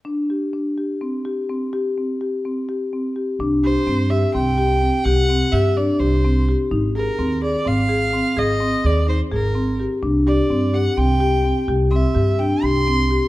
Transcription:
0.05 marimba D4
0.30 marimba G4
0.53 marimba D4
0.78 marimba G4
1.01 marimba C4
1.25 marimba G4
1.49 marimba C4
1.73 marimba G4
1.98 marimba C4
2.21 marimba G4
2.45 marimba C4
2.69 marimba G4
2.93 marimba C4
3.16 marimba G4
3.39 upright bass C2, marimba D4
3.64 marimba G4, violin C5
3.87 upright bass G2, marimba C4
4.10 marimba G4, violin E5
4.34 upright bass C2, marimba C4, violin G5
4.58 marimba G4
4.82 marimba C4
5.04 upright bass C2, marimba G4, violin F#5
5.29 marimba C4
5.52 upright bass G2, marimba G4, violin E5
5.77 marimba D4, violin D5
6.00 upright bass C2, marimba G4, violin C5
6.25 marimba C4
6.49 marimba G4
6.71 upright bass G#1, marimba D#4
6.95 marimba G#4, violin A#4
7.19 upright bass D#2, marimba C4
7.42 marimba G#4, violin D5
7.65 upright bass G#1, marimba C4, violin F5
7.89 marimba G#4
8.13 marimba C4
8.37 upright bass G#1, marimba G#4, violin D#5
8.60 marimba C4
8.84 upright bass D#2, marimba G#4, violin D5
9.07 marimba D#4, violin C5
9.31 upright bass G#1, marimba G#4, violin A#4
9.55 marimba C4
9.80 marimba G4
10.03 upright bass C2, marimba D4
10.27 marimba G4, violin D5
10.50 upright bass G2, marimba C4
10.73 marimba G4, violin F#5
10.97 upright bass C2, marimba C4, violin G5
11.20 marimba G4
11.45 marimba C4
11.68 upright bass C2, marimba G4
11.91 marimba C4, violin E5
12.15 upright bass G2, marimba G4
12.39 marimba D4, violin G5
12.63 upright bass C2, marimba G4, violin C6
12.87 marimba C4
13.11 marimba G4

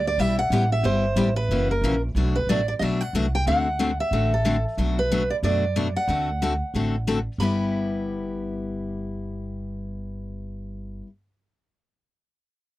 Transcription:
Already playing: upright bass D2
0.07 steel-string acoustic guitar D5
0.18 upright bass B1, steel-string acoustic guitar G3 B3 E4 G4 E5
0.39 steel-string acoustic guitar F#5
0.50 upright bass A1, steel-string acoustic guitar G3 B3 E4 G4
0.72 steel-string acoustic guitar E5
0.84 upright bass G1, steel-string acoustic guitar G3 B3 E4 G4 C5
1.16 upright bass A1, steel-string acoustic guitar G3 B3 E4 G4
1.36 steel-string acoustic guitar B4
1.49 upright bass F#1, steel-string acoustic guitar C#3 E3 A#3 C#4 F#4
1.71 steel-string acoustic guitar A#4
1.82 upright bass A#1, steel-string acoustic guitar C#3 E3 A#3 C#4 F#4
2.15 upright bass B1, steel-string acoustic guitar B2 F#3 A3 D4 F#4
2.35 steel-string acoustic guitar B4
2.47 upright bass A1, steel-string acoustic guitar B2 F#3 A3 D4 F#4 D5
2.68 steel-string acoustic guitar D5
2.79 upright bass B1, steel-string acoustic guitar B2 F#3 A3 D4 F#4 D#5 E5
3.01 steel-string acoustic guitar F#5
3.13 upright bass C2, steel-string acoustic guitar B2 F#3 A3 D4 F#4
3.35 steel-string acoustic guitar G5
3.46 upright bass D2, steel-string acoustic guitar D3 A3 C4 F#4 A4 F#5
3.79 steel-string acoustic guitar D3 A3 C4 F#4 A4
4.00 steel-string acoustic guitar E5
4.11 upright bass A1, steel-string acoustic guitar D3 A3 C4 F#4 A4
4.34 steel-string acoustic guitar A4
4.45 steel-string acoustic guitar D3 A3 C4 F#4 A4
4.78 upright bass B1, steel-string acoustic guitar B2 F#3 A3 D4 F#4
4.99 steel-string acoustic guitar B4
5.12 steel-string acoustic guitar B2 F#3 A3 D4 F#4
5.30 steel-string acoustic guitar D5
5.43 upright bass F#2, steel-string acoustic guitar B2 F#3 A3 D4 F#4 D5
5.76 steel-string acoustic guitar B2 F#3 A3 D4 F#4
5.96 steel-string acoustic guitar F#5
6.08 upright bass D2, steel-string acoustic guitar D3 A3 C4 F#4 A4
6.42 steel-string acoustic guitar D3 A3 C4 F#4 A4
6.74 upright bass A1, steel-string acoustic guitar D3 A3 C4 F#4 A4
7.07 steel-string acoustic guitar D3 A3 C4 F#4 A4
7.38 upright bass G1, steel-string acoustic guitar G3 B3 B5
7.42 steel-string acoustic guitar E4 G4

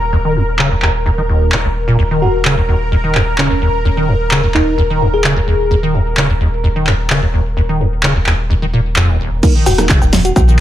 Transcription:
Already playing: sub bass D#1, analog synth pad A#4
0.13 acid bass D#2
0.25 acid bass D#3
0.36 acid bass D#2
0.59 acid bass C#3, clap
0.71 acid bass D#2
0.82 acid bass D#2, clap
1.06 acid bass D#2
1.18 acid bass D#3
1.29 acid bass D#2
1.52 acid bass F#3, clap
1.65 acid bass C#2
1.88 acid bass A#2
1.99 sub bass D#1, acid bass D#2, analog synth pad A#4
2.11 acid bass D#3
2.22 acid bass D#2, fm electric piano F#4
2.45 acid bass C#3, clap
2.58 acid bass D#2
2.69 acid bass D#2
2.92 acid bass D#2
3.04 acid bass D#3
3.15 acid bass D#2, clap
3.38 acid bass C#3, fm electric piano C#4, clap
3.51 acid bass D#2
3.62 acid bass D#2
3.85 acid bass D#2
3.97 acid bass D#3
4.08 acid bass D#2
4.31 acid bass C#3, clap
4.44 acid bass D#2
4.54 acid bass D#2, fm electric piano D#4, clap
4.78 acid bass D#2
4.90 acid bass D#3
5.01 acid bass D#2
5.14 fm electric piano G#4
5.24 acid bass C#3, clap
5.37 acid bass D#2
5.48 acid bass D#2
5.71 acid bass D#2
5.83 acid bass D#3
5.94 acid bass D#2
6.17 acid bass C#3, clap
6.29 acid bass D#2
6.41 acid bass D#2
6.64 acid bass D#2
6.76 acid bass D#3
6.87 acid bass D#2, clap
7.10 acid bass C#3, clap
7.22 acid bass D#2
7.34 acid bass D#2
7.57 acid bass D#2
7.69 acid bass D#3
7.80 acid bass D#2
8.03 acid bass C#3, clap
8.16 acid bass D#2
8.26 acid bass D#2, clap
8.50 acid bass D#2
8.62 acid bass D#3
8.73 acid bass A#2
8.96 acid bass F2, clap
9.09 acid bass D#2
9.20 acid bass D#1
9.43 acid bass D#2, tine electric piano A#3 D#4 A#4, kick, closed hi-hat, crash, shaker
9.55 acid bass D#3
9.66 sub bass D#1, acid bass D#2, fm electric piano F#4, open hi-hat, cowbell, shaker
9.78 tine electric piano A#3 D#4 A#4, cross-stick, snare, closed hi-hat, shaker
9.89 acid bass C#3, kick, clap, closed hi-hat, shaker
10.02 sub bass D#1, acid bass D#2, cowbell, shaker
10.13 acid bass D#2, snare, open hi-hat, low conga, shaker
10.25 fm electric piano F#4, closed hi-hat, shaker
10.36 sub bass A#1, acid bass D#2, fm electric piano F#4, kick, closed hi-hat, cowbell, shaker
10.48 acid bass D#3, shaker

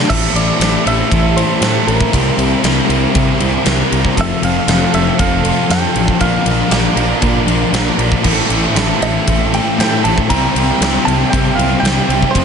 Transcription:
0.08 fingered electric bass A1, overdriven electric guitar A2 E3 C4 E4 A4, distorted electric guitar A2 E3 A3, string machine G4 C5 E5 A5, clean electric guitar E5, kick, crash
0.34 fingered electric bass A1, clean electric guitar D5, ride
0.59 fingered electric bass A1, distorted electric guitar A2 E3 A3, overdriven electric guitar E3 C4 E4 A4, snare, ride
0.84 fingered electric bass A1, distorted electric guitar E3 A3, overdriven electric guitar C4 E4 A4, clean electric guitar E5, ride
1.10 fingered electric bass A1, overdriven electric guitar A2 E3 C4 E4 A4, kick, ride
1.36 distorted electric guitar E3 A3, clean electric guitar C5, ride
1.60 distorted electric guitar A2 E3 A3, fingered electric bass A2, overdriven electric guitar E3 C4 E4 A4, snare, ride
1.86 fingered electric bass A1, overdriven electric guitar C4 E4 A4, clean electric guitar A#4, ride
2.01 kick
2.12 fingered electric bass C2, overdriven electric guitar C3 G3 A#3 E4 A#4, distorted electric guitar C3 G3 C4, string machine A#5, kick, ride
2.37 fingered electric bass C2, ride
2.62 fingered electric bass C2, distorted electric guitar C3 G3 C4, overdriven electric guitar G3 A#3 E4 A#4, snare, ride
2.88 fingered electric bass C2, distorted electric guitar G3 C4, overdriven electric guitar A#3 E4 A#4, ride
3.14 overdriven electric guitar C3 G3 A#3 E4 A#4, fingered electric bass C3, kick, ride
3.38 fingered electric bass C2, distorted electric guitar G3 C4, ride
3.63 fingered electric bass C2, distorted electric guitar C3 G3 C4, overdriven electric guitar G3 A#3 E4, snare, ride
3.67 overdriven electric guitar A#4
3.90 fingered electric bass C2, overdriven electric guitar A#3 E4 A#4, ride
4.05 kick
4.15 fingered electric bass F1, distorted electric guitar F2 C3 F3, overdriven electric guitar F3 C4 F4 A4, string machine C5 F5 C6, kick, ride
4.19 string machine A4, clean electric guitar E5
4.42 fingered electric bass F1, clean electric guitar F5, ride
4.67 fingered electric bass F1, distorted electric guitar F2 C3 F3, overdriven electric guitar F3 C4 F4 A4, snare, ride
4.92 fingered electric bass F1, distorted electric guitar C3 F3, overdriven electric guitar C4 F4 A4, clean electric guitar E5, ride
5.19 fingered electric bass F1, overdriven electric guitar F3 C4 F4 A4, clean electric guitar F5, kick, ride
5.42 distorted electric guitar C3 F3, ride
5.68 distorted electric guitar F2 C3 F3, fingered electric bass F2, overdriven electric guitar F3 C4 F4 A4, clean electric guitar G5, snare, ride
5.94 fingered electric bass A1, overdriven electric guitar C4 F4 A4, ride
6.08 kick
6.18 fingered electric bass A#1, overdriven electric guitar A#2 D3 F3 A#3 D4 A#4, distorted electric guitar A#2 F3 A#3, clean electric guitar F5, string machine D6, kick, ride
6.23 string machine A#4 A5
6.45 fingered electric bass A#1, ride
6.69 fingered electric bass A#1, distorted electric guitar A#2 F3 A#3, overdriven electric guitar F3 A#3 D4 A#4, snare, ride
6.94 fingered electric bass A#1, overdriven electric guitar F3 A#3 D4 A#4, distorted electric guitar F3 A#3, ride
7.20 overdriven electric guitar A#2 D3 F3 A#3 D4 A#4, fingered electric bass A#2, kick, ride
7.46 fingered electric bass A#1, distorted electric guitar F3 A#3, ride
7.72 fingered electric bass A#1, distorted electric guitar A#2 F3 A#3, overdriven electric guitar F3 A#3 D4 A#4, snare, ride
7.98 fingered electric bass A#1, overdriven electric guitar F3 A#3 D4 A#4, ride
8.12 kick
8.23 fingered electric bass A1, overdriven electric guitar A2 E3 C4 E4 A4, distorted electric guitar A2 E3 A3, string machine C5 G5 E6, kick, crash
8.49 fingered electric bass A1, ride
8.75 fingered electric bass A1, distorted electric guitar A2 E3 A3, overdriven electric guitar E3 C4 E4 A4, snare, ride
9.00 fingered electric bass A1, distorted electric guitar E3 A3, overdriven electric guitar C4 E4 A4, clean electric guitar E5, ride
9.26 fingered electric bass A1, overdriven electric guitar A2 E3 C4 E4 A4, kick, ride
9.52 distorted electric guitar E3 A3, clean electric guitar G5, ride
9.78 distorted electric guitar A2 E3 A3, fingered electric bass A2, overdriven electric guitar E3 C4 E4 A4, clean electric guitar G5, snare, ride
10.03 fingered electric bass A1, overdriven electric guitar C4 E4 A4, clean electric guitar A5, ride
10.18 kick
10.28 fingered electric bass C2, overdriven electric guitar C3 G3 A#3 E4 G4, distorted electric guitar C3 G3 C4, clean electric guitar A#5, string machine A#5, kick, ride
10.32 string machine G5
10.55 fingered electric bass C2, ride
10.80 fingered electric bass C2, distorted electric guitar C3 G3 C4, overdriven electric guitar G3 A#3 E4 G4, snare, ride
11.05 fingered electric bass C2, distorted electric guitar G3 C4, overdriven electric guitar A#3 E4 G4, clean electric guitar A5, ride
11.30 overdriven electric guitar C3 G3 A#3 E4, fingered electric bass C3, clean electric guitar G5, kick, ride
11.35 overdriven electric guitar G4
11.55 fingered electric bass C2, distorted electric guitar C4, clean electric guitar F5, ride
11.60 distorted electric guitar G3
11.80 fingered electric bass C2, distorted electric guitar C3 G3 C4, overdriven electric guitar G3 A#3 E4, clean electric guitar G5
11.85 overdriven electric guitar G4, snare, ride
12.08 fingered electric bass C2, overdriven electric guitar A#3 E4 G4, ride
12.22 kick
12.31 fingered electric bass F1, distorted electric guitar F2 C3, overdriven electric guitar F2 C3, string machine F4 A5, clean electric guitar C5
12.35 overdriven electric guitar F3 A3 C4 F4, distorted electric guitar F3, string machine C5 E6, kick, ride

